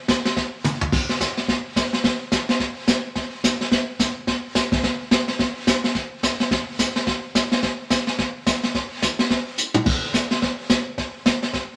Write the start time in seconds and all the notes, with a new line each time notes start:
0.08 kick, snare, hi-hat pedal
0.25 snare
0.36 brush sweep, kick, snare
0.64 hi-hat pedal, high tom
0.81 floor tom
0.92 brush sweep, kick, snare, crash
1.09 snare
1.20 kick, snare, hi-hat pedal
1.37 snare
1.48 brush sweep, kick, snare
1.76 kick, snare, hi-hat pedal
1.93 snare
2.04 brush sweep, kick, snare
2.32 kick, snare, hi-hat pedal
2.49 snare
2.60 brush sweep, kick, snare
2.88 kick, snare, hi-hat pedal
3.15 brush sweep, kick, snare
3.44 kick, snare, hi-hat pedal
3.61 snare
3.71 brush sweep, kick, snare
3.99 kick, snare, hi-hat pedal
4.27 brush sweep, kick, snare
4.55 kick, snare, hi-hat pedal
4.72 kick, snare
4.83 brush sweep, kick, snare
5.11 kick, snare, hi-hat pedal
5.28 snare
5.39 brush sweep, kick, snare
5.67 kick, snare, hi-hat pedal
5.84 snare
5.95 brush sweep, kick, snare
6.23 kick, snare, hi-hat pedal
6.40 snare
6.51 brush sweep, kick, snare
6.79 kick, snare, hi-hat pedal
6.96 snare
7.07 brush sweep, kick, snare
7.35 kick, snare, hi-hat pedal
7.52 snare
7.63 brush sweep, kick, snare
7.90 kick, snare, hi-hat pedal
8.07 snare
8.18 brush sweep, kick, snare
8.46 kick, snare, hi-hat pedal
8.63 snare
8.74 brush sweep, kick, snare
9.02 kick, snare, hi-hat pedal
9.19 snare
9.30 brush sweep, kick, snare
9.58 hi-hat pedal
9.74 mid tom
9.86 brush sweep, kick, snare, crash
10.14 kick, snare, hi-hat pedal
10.31 snare
10.42 brush sweep, kick, snare
10.70 kick, snare, hi-hat pedal
10.98 brush sweep, kick, snare
11.26 kick, snare, hi-hat pedal
11.43 snare
11.53 brush sweep, kick, snare